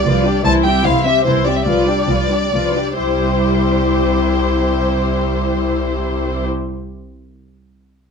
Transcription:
Already playing: D5
0.05 C2 F3 F4 B4
0.24 G3 D4 G4 D5
0.44 C2 E3 E4 C5 A5
0.64 G3 C4 G4 E5 G5
0.84 C2 E3 E4 C5 F5
1.05 G3 C4 G4 E5
1.24 C2 E3 E4 C5
1.45 G3 C4 G4 D5 E5
1.56 E5
1.66 C2 F3 F4 B4 D5
1.88 G3 D4 G4 D5
2.08 C2 F3 F4 B4
2.30 G3 D4 G4 D5
2.52 C2 F3 F4 B4
2.75 G3 D4 G4 D5
2.97 C2 G3 E4 G4 C5

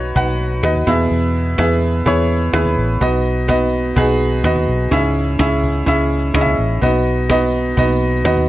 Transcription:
Already playing: B1 D#4 F#4 B4 C#5 F#5
0.15 B1 D#4 F#4 B4 F#5, cajon bass
0.40 cajon slap
0.63 D#2 D#4 F#4 B4 D#5, cajon bass, cajon slap
0.75 cajon bass
0.87 E2 B2 B3 E4 G#4 E5, cajon bass
1.11 E2, cajon slap
1.35 cajon slap
1.58 E2 B3 E4 G#4 E5, cajon bass, cajon slap
1.82 cajon slap
2.06 E2 B3 E4 G#4 C#5, cajon bass
2.30 cajon slap
2.53 D#2 B3 E4 G#4 B4, cajon bass, cajon slap
2.65 cajon bass
2.77 A1, cajon slap
3.01 B1 B3 D#4 F#4 D#5, cajon bass
3.25 cajon slap
3.48 B3 D#4 F#4 D#5, cajon bass, cajon slap
3.73 cajon slap
3.96 B1 B3 D#4 F#4 G#4, cajon bass
4.20 cajon slap
4.44 D#2 B3 D#4 F#4 D#5, cajon bass, cajon slap
4.56 cajon bass
4.68 B1, cajon slap
4.91 C#2 G#2 C#4 E4 G#4 E5, cajon bass
5.15 cajon slap
5.39 C#2 C#4 E4 G#4 E5, cajon bass, cajon slap
5.63 cajon bass, cajon slap
5.86 C#2 C#4 E4 G#4 E5, cajon bass
6.11 cajon slap
6.34 C#2 C#4 E4 G#4 D#5, cajon bass, cajon slap
6.41 E5
6.46 cajon bass
6.58 A1, cajon slap
6.82 B1 B3 D#4 F#4 D#5, cajon bass
7.06 cajon slap
7.29 B3 D#4 F#4 D#5, cajon bass, cajon slap
7.54 cajon slap
7.77 B1 B3 D#4 F#4 D#5, cajon bass
8.01 cajon slap
8.24 D#2 B3 D#4 F#4 D#5, cajon bass, cajon slap
8.37 cajon bass

